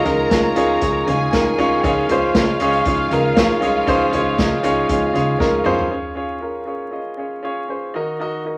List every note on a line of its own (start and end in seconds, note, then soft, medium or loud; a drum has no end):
0.00 0.52 C#3 medium
0.00 0.04 C#4 loud
0.00 0.04 D#4 loud
0.00 0.05 F4 loud
0.00 0.06 G#4 loud
0.00 0.06 A#4 medium
0.00 1.03 A#4 medium
0.00 0.32 C#5 loud
0.00 5.92 D#5 loud
0.00 1.03 A#5 medium
0.04 0.26 C#2 loud
0.04 0.31 G#3 soft
0.04 0.28 C#4 medium
0.04 0.28 D#4 medium
0.04 0.31 D#4 soft
0.04 0.28 F4 medium
0.04 0.31 F4 medium
0.04 0.28 G#4 medium
0.04 0.29 A#4 loud
0.04 closed hi-hat medium
0.04 floor tom medium
0.30 0.52 C#2 loud
0.30 0.56 C#3 medium
0.30 0.57 F3 medium
0.30 0.57 G#3 medium
0.30 0.53 C#4 medium
0.30 0.54 D#4 medium
0.30 0.56 D#4 medium
0.30 0.54 F4 medium
0.30 0.55 F4 medium
0.30 0.54 G#4 medium
0.30 0.54 C#5 medium
0.30 kick loud
0.30 snare loud
0.30 closed hi-hat medium
0.56 0.77 C#2 loud
0.56 0.81 G#3 soft
0.56 0.79 C#4 loud
0.56 0.79 D#4 loud
0.56 0.82 D#4 medium
0.56 0.82 F4 medium
0.56 0.79 F4 loud
0.56 0.80 G#4 loud
0.56 0.80 C#5 loud
0.56 closed hi-hat loud
0.81 1.03 C#2 loud
0.81 1.07 F3 medium
0.81 1.08 G#3 medium
0.81 1.04 C#4 medium
0.81 1.05 D#4 medium
0.81 1.07 D#4 medium
0.81 1.05 F4 medium
0.81 1.06 F4 medium
0.81 1.05 G#4 medium
0.81 1.05 C#5 medium
0.81 kick loud
0.81 closed hi-hat medium
1.07 1.28 C#3 loud
1.07 1.32 G#3 soft
1.07 1.30 C#4 medium
1.07 1.30 D#4 medium
1.07 1.33 D#4 medium
1.07 1.33 F4 medium
1.07 1.30 F4 medium
1.07 1.82 G#4 medium
1.07 1.30 G#4 medium
1.07 1.31 C#5 loud
1.07 1.82 G#5 medium
1.07 closed hi-hat medium
1.07 floor tom medium
1.32 1.54 C#2 medium
1.32 1.58 C#3 medium
1.32 1.58 F3 medium
1.32 1.59 G#3 loud
1.32 1.55 C#4 medium
1.32 1.56 D#4 medium
1.32 1.58 D#4 medium
1.32 1.56 F4 medium
1.32 1.56 G#4 medium
1.32 1.56 A#4 loud
1.32 kick loud
1.32 snare medium
1.32 closed hi-hat medium
1.58 1.79 C2 loud
1.58 1.83 G#3 medium
1.58 1.81 C#4 loud
1.58 1.81 D#4 loud
1.58 1.83 D#4 medium
1.58 1.83 F4 medium
1.58 1.81 F4 loud
1.58 1.82 G#4 loud
1.58 1.82 C#5 loud
1.58 closed hi-hat medium
1.83 2.05 C#2 loud
1.83 2.09 C#3 medium
1.83 2.56 C#3 medium
1.83 2.09 F3 medium
1.83 2.09 G#3 medium
1.83 2.06 C#4 loud
1.83 2.07 D#4 loud
1.83 2.09 D#4 loud
1.83 2.07 F4 loud
1.83 5.87 F4 medium
1.83 2.07 F4 medium
1.83 2.07 G#4 loud
1.83 2.07 C#5 loud
1.83 5.87 F5 loud
1.83 kick loud
1.83 closed hi-hat medium
2.09 2.30 C#2 loud
2.09 2.34 G#3 soft
2.09 2.32 C#4 loud
2.09 2.32 D#4 medium
2.09 2.35 D#4 medium
2.09 2.34 F4 medium
2.09 2.33 F4 medium
2.09 2.33 G#4 medium
2.09 2.33 C5 loud
2.09 closed hi-hat medium
2.09 floor tom medium
2.34 2.56 C#2 loud
2.34 2.60 C#3 medium
2.34 2.60 F3 medium
2.34 2.61 G#3 medium
2.34 2.57 C#4 medium
2.34 2.58 D#4 medium
2.34 2.60 D#4 medium
2.34 2.58 F4 medium
2.34 2.59 F4 loud
2.34 2.58 G#4 medium
2.34 2.58 C#5 loud
2.34 kick loud
2.34 snare loud
2.34 closed hi-hat medium
2.60 2.81 C#2 loud
2.60 2.85 G#3 medium
2.60 2.83 C#4 loud
2.60 2.83 D#4 loud
2.60 2.86 D#4 medium
2.60 2.86 F4 medium
2.60 2.83 F4 loud
2.60 2.84 G#4 medium
2.60 2.84 C#5 loud
2.60 closed hi-hat loud
2.73 closed hi-hat medium
2.85 3.07 C#2 loud
2.85 3.11 F3 medium
2.85 3.11 G#3 medium
2.85 3.08 C#4 medium
2.85 3.09 D#4 medium
2.85 3.11 D#4 medium
2.85 3.09 F4 medium
2.85 3.09 G#4 medium
2.85 3.09 C#5 loud
2.85 kick loud
2.85 closed hi-hat loud
3.11 3.32 C#3 loud
3.11 3.37 G#3 medium
3.11 3.34 C#4 medium
3.11 3.34 D#4 medium
3.11 3.37 D#4 medium
3.11 3.36 F4 medium
3.11 3.34 F4 medium
3.11 3.34 G#4 medium
3.11 3.35 A#4 loud
3.11 closed hi-hat medium
3.11 floor tom medium
3.36 3.57 C#2 medium
3.36 3.62 C#3 medium
3.36 3.62 F3 medium
3.36 3.63 G#3 medium
3.36 3.59 C#4 medium
3.36 3.59 D#4 medium
3.36 3.62 D#4 medium
3.36 3.59 F4 medium
3.36 3.60 F4 loud
3.36 3.59 G#4 medium
3.36 3.60 C#5 medium
3.36 kick loud
3.36 snare loud
3.36 closed hi-hat medium
3.61 3.83 C2 loud
3.61 3.87 G#3 medium
3.61 3.84 C#4 loud
3.61 3.84 D#4 loud
3.61 3.87 D#4 medium
3.61 3.87 F4 medium
3.61 3.85 F4 loud
3.61 3.85 G#4 loud
3.61 3.85 C#5 loud
3.61 closed hi-hat medium
3.87 4.08 C#2 loud
3.87 4.13 C#3 medium
3.87 4.60 C#3 medium
3.87 4.13 F3 medium
3.87 4.13 G#3 medium
3.87 4.10 C#4 loud
3.87 4.10 D#4 loud
3.87 4.13 D#4 medium
3.87 4.10 F4 loud
3.87 4.11 F4 loud
3.87 4.10 G#4 loud
3.87 4.11 C5 loud
3.87 kick loud
3.87 closed hi-hat medium
4.12 4.34 C#2 loud
4.12 4.38 G#3 soft
4.12 4.35 C#4 loud
4.12 4.35 D#4 medium
4.12 4.38 D#4 medium
4.12 4.38 F4 medium
4.12 4.35 F4 medium
4.12 4.36 G#4 medium
4.12 4.36 C#5 loud
4.12 closed hi-hat medium
4.12 floor tom medium
4.38 4.59 C#2 loud
4.38 4.63 C#3 medium
4.38 4.64 F3 medium
4.38 4.64 G#3 medium
4.38 4.61 C#4 medium
4.38 4.61 D#4 medium
4.38 4.64 D#4 medium
4.38 4.61 F4 medium
4.38 4.62 F4 loud
4.38 4.61 G#4 medium
4.38 4.62 C#5 medium
4.38 kick loud
4.38 snare loud
4.38 closed hi-hat medium
4.63 4.84 C#2 loud
4.63 4.88 G#3 medium
4.63 4.86 C#4 loud
4.63 4.86 D#4 loud
4.63 4.89 D#4 medium
4.63 4.89 F4 medium
4.63 4.87 F4 loud
4.63 4.87 G#4 medium
4.63 4.87 C#5 loud
4.63 closed hi-hat loud
4.88 5.10 C#2 loud
4.88 5.14 F3 medium
4.88 5.15 G#3 medium
4.88 5.12 C#4 medium
4.88 5.12 D#4 medium
4.88 5.15 D#4 medium
4.88 5.12 F4 medium
4.88 5.13 F4 medium
4.88 5.12 G#4 medium
4.88 5.12 C#5 medium
4.88 kick loud
4.88 closed hi-hat loud
5.13 5.36 C#3 loud
5.13 5.39 G#3 soft
5.13 5.37 C#4 medium
5.13 5.37 D#4 medium
5.13 5.40 D#4 medium
5.13 5.40 F4 medium
5.13 5.37 F4 medium
5.13 5.37 G#4 medium
5.13 5.38 C#5 loud
5.13 closed hi-hat medium
5.13 floor tom medium
5.39 5.61 C#2 loud
5.39 5.65 C#3 medium
5.39 5.66 F3 medium
5.39 5.66 G#3 medium
5.39 5.62 C#4 medium
5.39 5.62 D#4 medium
5.39 5.65 D#4 medium
5.39 5.62 F4 medium
5.39 5.63 F4 loud
5.39 5.63 G#4 medium
5.39 5.63 A#4 loud
5.39 kick loud
5.39 snare medium
5.64 5.86 C2 medium
5.64 5.92 G#3 medium
5.64 5.87 C#4 loud
5.64 5.88 D#4 loud
5.64 5.91 D#4 medium
5.64 5.91 F4 medium
5.64 5.88 F4 loud
5.64 5.88 G#4 loud
5.64 5.88 C5 loud
5.64 mid tom medium
5.79 floor tom medium
5.89 6.63 C#3 soft
5.89 6.13 C#4 medium
5.89 6.13 F4 medium
5.89 6.14 G#4 medium
5.89 6.14 C#5 medium
6.15 6.38 C#4 medium
6.15 6.39 F4 medium
6.15 6.39 G#4 medium
6.15 6.39 C#5 medium
6.41 6.64 C#4 medium
6.41 6.64 F4 medium
6.41 6.65 G#4 medium
6.41 6.65 A#4 medium
6.66 6.89 C#4 medium
6.66 6.90 F4 medium
6.66 6.90 G#4 medium
6.66 6.90 C#5 medium
6.91 7.15 C#4 medium
6.91 7.15 F4 medium
6.91 7.15 G#4 medium
6.91 7.16 D#5 medium
7.17 7.41 C#4 medium
7.17 7.41 F4 medium
7.17 7.41 G#4 medium
7.17 7.42 C#5 medium
7.43 7.66 C#4 medium
7.43 7.67 F4 medium
7.43 7.67 G#4 medium
7.43 7.67 C#5 medium
7.68 7.92 C#4 medium
7.68 7.92 F4 medium
7.68 7.92 G#4 soft
7.68 7.92 C5 medium
7.94 8.58 D#3 medium
7.94 8.17 D#4 medium
7.94 8.17 F#4 medium
7.94 8.18 A#4 medium
7.94 8.18 D#5 medium
8.19 8.43 D#4 medium
8.19 8.43 F#4 medium
8.19 8.43 A#4 medium
8.19 8.44 D#5 loud
8.45 8.58 D#4 medium
8.45 8.58 F#4 medium
8.45 8.58 A#4 medium
8.45 8.58 D#5 medium